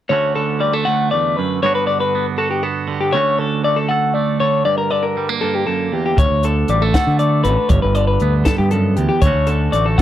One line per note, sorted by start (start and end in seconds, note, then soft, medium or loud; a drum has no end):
0.09 0.86 D2 medium
0.09 0.35 D3 medium
0.09 0.60 A3 medium
0.09 1.60 C#4 soft
0.09 0.35 C#5 medium
0.13 1.65 F#4 medium
0.35 1.62 D3 medium
0.35 0.61 A4 medium
0.60 0.73 G3 medium
0.60 0.73 D5 medium
0.73 1.62 A3 soft
0.73 0.86 A4 medium
0.85 1.12 D2 medium
0.85 1.11 F#5 medium
1.11 1.37 E2 soft
1.11 1.37 D5 medium
1.37 1.62 F#2 medium
1.37 1.62 B4 medium
1.63 3.12 G2 medium
1.63 1.87 D3 medium
1.63 2.14 B3 medium
1.63 3.16 D4 medium
1.63 2.38 F#4 medium
1.63 1.75 C#5 medium
1.75 1.86 B4 medium
1.87 2.86 D3 medium
1.87 2.00 D5 medium
2.00 2.26 B4 medium
2.15 2.62 B3 medium
2.38 3.11 F#4 medium
2.38 2.50 A4 medium
2.51 2.63 G4 medium
2.63 3.11 B3 medium
2.63 2.89 A4 medium
2.88 3.13 D3 soft
2.88 2.99 G4 medium
3.01 3.14 G4 medium
3.13 4.65 D2 medium
3.13 3.37 D3 medium
3.13 3.64 A3 medium
3.13 4.64 C#4 medium
3.13 3.39 C#5 medium
3.17 3.90 F#4 medium
3.38 4.40 D3 medium
3.38 3.64 A4 medium
3.64 4.14 A3 soft
3.64 3.77 D5 medium
3.76 3.90 A4 medium
3.89 4.64 A4 medium
3.89 4.14 F#5 medium
4.14 4.63 A3 soft
4.14 4.40 D5 medium
4.40 4.90 D3 medium
4.40 4.65 C#5 medium
4.65 5.41 G2 medium
4.65 4.77 D5 medium
4.78 4.91 A#4 medium
4.91 6.43 D3 medium
4.91 5.04 D5 medium
5.03 5.29 A#4 medium
5.17 5.29 G3 medium
5.29 6.18 A#3 soft
5.41 5.67 G2 medium
5.41 5.55 A4 medium
5.55 5.66 G4 medium
5.67 5.92 F#2 medium
5.67 5.93 A4 medium
5.92 6.17 E2 medium
5.92 6.04 G4 medium
6.06 6.19 G4 medium
6.17 7.69 D2 medium
6.17 6.29 D2 loud
6.17 6.44 C#5 medium
6.17 kick loud
6.17 closed hi-hat medium
6.31 6.64 D2 medium
6.43 7.43 D3 medium
6.43 6.70 A4 medium
6.43 closed hi-hat medium
6.68 6.91 A1 medium
6.68 6.82 G3 soft
6.68 6.82 D5 medium
6.68 closed hi-hat medium
6.82 7.18 A3 soft
6.82 6.95 A4 medium
6.94 7.68 A4 soft
6.94 7.19 F#5 medium
6.94 kick medium
6.94 snare medium
6.94 closed hi-hat medium
7.07 7.46 D3 medium
7.19 7.68 A3 soft
7.19 7.43 D5 medium
7.19 closed hi-hat soft
7.44 7.56 A1 medium
7.44 7.94 D3 medium
7.44 7.69 B4 medium
7.44 closed hi-hat medium
7.69 7.81 G1 loud
7.69 8.46 G2 medium
7.69 7.82 C#5 medium
7.69 kick medium
7.69 closed hi-hat medium
7.82 8.16 G1 medium
7.82 7.95 B4 medium
7.95 9.23 D3 medium
7.95 8.07 D5 medium
7.95 closed hi-hat medium
8.07 8.34 B4 medium
8.20 8.43 D2 medium
8.20 9.20 B3 medium
8.20 closed hi-hat medium
8.45 8.72 G2 medium
8.45 8.58 A4 medium
8.45 kick medium
8.45 snare medium
8.45 closed hi-hat medium
8.58 8.98 G2 medium
8.58 8.71 G4 medium
8.71 8.98 F#2 medium
8.71 8.96 A4 medium
8.71 closed hi-hat medium
8.96 9.09 D2 loud
8.96 9.24 E2 medium
8.96 9.08 G4 medium
8.96 closed hi-hat medium
9.09 9.22 G4 medium
9.22 9.33 D2 loud
9.22 10.02 D2 medium
9.22 9.49 D3 medium
9.22 9.48 C#5 medium
9.22 kick medium
9.22 closed hi-hat medium
9.26 9.75 A3 medium
9.26 10.02 C#4 soft
9.26 9.98 F#4 medium
9.34 9.68 D2 medium
9.47 10.02 D3 medium
9.47 9.73 A4 medium
9.47 closed hi-hat medium
9.72 9.95 A1 medium
9.72 10.02 A3 soft
9.72 9.86 D5 medium
9.72 closed hi-hat medium
9.86 9.99 A4 medium
9.98 10.02 A4 medium
9.98 10.02 F#5 medium
9.98 kick medium
9.98 closed hi-hat medium